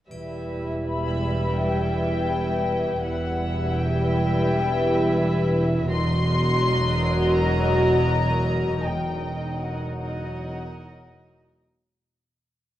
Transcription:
0.11 2.99 E1 soft
0.11 2.99 E2 soft
0.11 3.00 G3 soft
0.11 3.00 E4 soft
0.11 2.99 B4 soft
0.11 2.99 E5 soft
0.11 triangle soft
0.85 1.55 B5 soft
1.59 3.04 G5 soft
3.02 5.88 E1 soft
3.02 5.88 E2 soft
3.02 5.88 G3 soft
3.02 5.88 E4 soft
3.02 5.88 B4 soft
3.02 5.88 E5 soft
3.02 3.75 F#5 medium
3.76 5.56 G5 medium
5.91 8.81 E1 medium
5.91 8.81 E2 medium
5.91 8.81 F#3 medium
5.91 8.81 F#4 medium
5.91 8.81 A#4 medium
5.91 8.81 D#5 medium
5.91 7.32 C6 medium
7.37 8.85 A#5 medium
8.84 11.63 E1 soft
8.84 11.63 E2 soft
8.84 11.63 F#3 soft
8.84 11.63 D#4 soft
8.84 11.63 A#4 soft
8.84 11.63 D#5 soft
8.84 9.61 G5 soft
9.61 11.50 F#5 soft

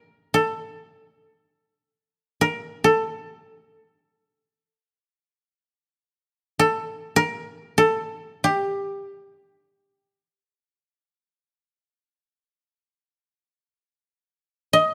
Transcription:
0.00 0.40 A#4 medium
0.34 2.40 A4 medium
2.41 2.90 A#4 medium
2.84 4.75 A4 medium
6.59 7.22 A4 medium
7.16 7.84 A#4 medium
7.78 9.68 A4 medium
8.44 11.73 G4 medium
14.73 14.94 D#5 medium

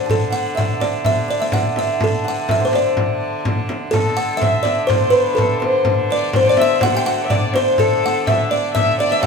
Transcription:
0.00 0.10 C5 medium
0.00 1.27 C5 medium
0.00 0.80 D5 medium
0.00 0.54 E5 medium
0.00 0.30 F#5 medium
0.06 3.95 D3 medium
0.06 1.99 A4 medium
0.06 frame drum medium
0.11 0.32 A4 medium
0.30 1.51 F#5 medium
0.30 0.55 F#5 medium
0.30 frame drum soft
0.55 1.04 E5 medium
0.55 0.82 E5 medium
0.55 frame drum medium
0.80 1.28 D5 medium
0.80 0.92 D5 medium
0.80 frame drum medium
1.04 1.39 E5 medium
1.04 1.28 E5 medium
1.04 frame drum medium
1.28 2.71 D5 medium
1.28 1.41 D5 medium
1.28 frame drum soft
1.39 1.77 E5 medium
1.39 1.53 E5 medium
1.52 2.24 F#5 medium
1.52 1.76 F#5 medium
1.52 frame drum medium
1.76 2.48 E5 medium
1.76 2.03 E5 medium
1.76 frame drum medium
2.00 3.92 A4 medium
2.00 2.25 A4 medium
2.00 frame drum medium
2.24 4.39 F#5 medium
2.24 2.49 F#5 medium
2.24 frame drum soft
2.48 4.41 E5 medium
2.48 2.56 E5 medium
2.48 frame drum medium
2.60 4.88 C5 medium
2.65 2.76 C5 medium
2.71 4.64 D5 medium
2.71 frame drum medium
2.75 3.67 D5 medium
2.97 frame drum medium
3.45 frame drum medium
3.69 frame drum medium
3.91 4.15 A4 medium
3.91 5.36 A4 medium
3.91 4.44 A4 medium
3.91 frame drum medium
3.95 7.79 D3 medium
4.17 4.42 F#5 medium
4.17 frame drum soft
4.37 4.62 E5 medium
4.41 6.56 E5 medium
4.41 4.90 E5 medium
4.41 frame drum medium
4.63 4.87 D5 medium
4.63 6.10 D5 medium
4.63 frame drum medium
4.87 5.11 C5 medium
4.87 5.18 C5 medium
4.87 frame drum medium
4.91 5.34 C5 medium
5.10 5.35 B4 medium
5.10 5.66 B4 medium
5.32 5.81 A4 medium
5.32 5.41 B4 medium
5.37 7.78 A4 medium
5.37 5.63 A4 medium
5.37 frame drum medium
5.60 6.33 C5 medium
5.60 frame drum medium
5.65 5.86 C5 medium
5.85 frame drum medium
6.10 6.44 D5 medium
6.10 6.34 D5 medium
6.33 7.55 C5 medium
6.33 6.48 C5 medium
6.33 frame drum medium
6.45 7.29 D5 medium
6.45 6.60 D5 medium
6.50 6.60 D5 medium
6.57 8.27 E5 medium
6.57 6.83 E5 medium
6.57 frame drum medium
6.62 6.85 E5 loud
6.81 6.93 F#4 medium
6.81 7.00 F#5 medium
6.81 6.95 F#5 loud
6.81 frame drum medium
6.94 7.05 G4 medium
6.94 7.13 G5 medium
6.94 7.08 G5 medium
7.05 7.26 F#4 medium
7.05 7.31 F#5 medium
7.05 8.04 F#5 medium
7.05 frame drum soft
7.24 7.32 E5 medium
7.30 8.52 D5 medium
7.30 7.55 D5 medium
7.30 frame drum medium
7.54 7.80 C5 medium
7.54 9.26 C5 medium
7.54 7.78 C5 medium
7.54 frame drum medium
7.78 9.26 D3 medium
7.78 8.27 A4 medium
7.78 9.26 A4 medium
7.78 8.02 A4 medium
7.78 frame drum medium
8.03 9.20 F#5 medium
8.03 8.29 F#5 medium
8.03 frame drum soft
8.26 8.51 E5 medium
8.26 8.52 E5 medium
8.26 8.75 E5 medium
8.26 frame drum medium
8.50 8.74 D5 medium
8.50 8.76 D5 medium
8.50 8.98 D5 medium
8.74 8.97 E5 medium
8.74 9.00 E5 medium
8.74 9.09 E5 medium
8.74 frame drum medium
8.99 9.26 D5 medium
8.99 9.12 D5 medium
8.99 frame drum soft
9.10 9.26 E5 medium
9.10 9.25 E5 medium
9.10 9.17 E5 medium
9.21 9.26 F#4 medium
9.21 9.26 F#5 medium
9.21 frame drum medium

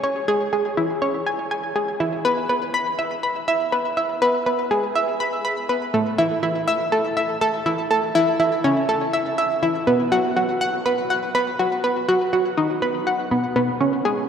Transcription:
0.04 0.27 C#5 medium
0.28 0.52 G#4 loud
0.53 0.76 G#4 medium
0.77 0.95 E4 medium
1.02 1.25 C#5 medium
1.26 1.44 G#5 medium
1.51 1.69 G#5 medium
1.76 1.93 G#4 medium
2.00 2.24 E4 medium
2.25 2.48 B4 loud
2.49 2.73 B4 medium
2.74 2.85 B5 medium
2.99 3.22 E5 medium
3.23 3.41 B5 medium
3.48 3.59 E5 loud
3.72 3.83 B4 medium
3.97 4.20 E5 medium
4.22 4.45 B4 loud
4.46 4.70 B4 medium
4.71 4.89 G#4 medium
4.95 5.19 E5 medium
5.20 5.38 B5 medium
5.45 5.62 B5 medium
5.69 5.87 B4 medium
5.94 6.17 A3 medium
6.18 6.42 E4 loud
6.43 6.66 E4 medium
6.68 6.78 E5 medium
6.92 7.15 A4 medium
7.17 7.34 E5 medium
7.41 7.52 A4 loud
7.66 7.77 E4 medium
7.91 8.14 A4 medium
8.15 8.38 E4 loud
8.40 8.63 E4 medium
8.64 8.82 C#4 medium
8.89 9.12 A4 medium
9.13 9.31 E5 medium
9.38 9.56 E5 medium
9.63 9.80 E4 medium
9.87 10.11 B3 medium
10.12 10.35 F#4 medium
10.36 10.60 F#4 medium
10.61 10.72 F#5 medium
10.86 11.09 B4 medium
11.10 11.28 F#5 medium
11.35 11.45 B4 loud
11.59 11.70 F#4 medium
11.84 12.07 B4 medium
12.09 12.32 F#4 loud
12.33 12.56 F#4 medium
12.57 12.75 D#4 medium
12.82 13.06 B4 medium
13.07 13.25 F#5 medium
13.31 13.49 B3 medium
13.56 13.67 B3 medium
13.81 14.04 C#4 medium
14.05 14.29 G#4 loud

